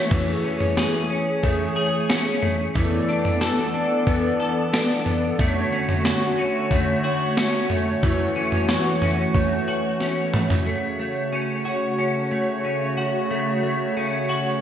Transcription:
Already playing: E3 A3 C#4 F#4 C#5
0.11 E3 G#4, kick, floor tom, crash
0.44 C#4
0.60 floor tom
0.77 G#4, snare
1.10 C#4
1.43 A3, kick, floor tom
1.76 G#4
2.09 C#4, snare
2.42 A3, floor tom
2.75 E3 B3 A4 D5, kick, floor tom, tambourine
3.08 D4, tambourine
3.25 floor tom
3.41 A4, snare, tambourine
3.74 D4
4.07 B3, kick, floor tom, tambourine
4.40 A4, tambourine
4.73 D4, snare, tambourine
5.06 B3, floor tom, tambourine
5.39 D3 A3 F#4 C#5, kick, floor tom, tambourine
5.72 C#4, tambourine
5.89 floor tom
6.05 F#4, snare, tambourine
6.38 C#4
6.71 A3, kick, floor tom, tambourine
7.04 F#4, tambourine
7.37 C#4, snare, tambourine
7.70 A3, floor tom, tambourine
8.03 E3 F#4, kick, floor tom, tambourine
8.36 C#4, tambourine
8.52 floor tom
8.69 F#4, snare, tambourine
9.02 C#4, floor tom
9.34 A3, kick, floor tom, tambourine
9.67 F#4, tambourine
10.00 C#4, snare
10.34 A3, mid tom
10.50 floor tom
10.66 C#3 A3 F#4 C#5
10.99 A3
11.33 C#4
11.65 F#4
11.98 C#4
12.31 A3
12.65 C#4
12.97 F#4
13.31 A3
13.63 A3
13.97 C#4
14.29 F#4

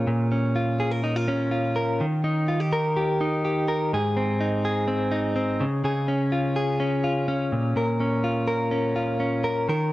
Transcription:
Already playing: C#4 F4 G#4
0.07 A#2
0.32 C#4
0.56 F4
0.80 G#4
0.91 A#4
1.03 D#4
1.16 F4
1.28 C#4
1.51 F4
1.76 A#4
2.01 D#3
2.24 D#4
2.48 F4
2.60 G4
2.73 A#4
2.97 G4
3.21 D#4
3.45 G4
3.68 A#4
3.93 G#2 G#4
4.17 C4
4.40 D#4
4.65 G#4
4.88 C4
5.12 D#4
5.36 C4
5.61 C#3
5.84 C#3 G#4
6.08 C#4
6.32 F4
6.56 G#4
6.80 C#4
7.04 F4
7.28 C#4
7.52 A#2
7.76 A#2 A#4
8.00 C#4
8.24 F4
8.47 A#4
8.71 C#4
8.96 F4
9.20 C#4
9.44 A#4
9.69 D#3 A#4

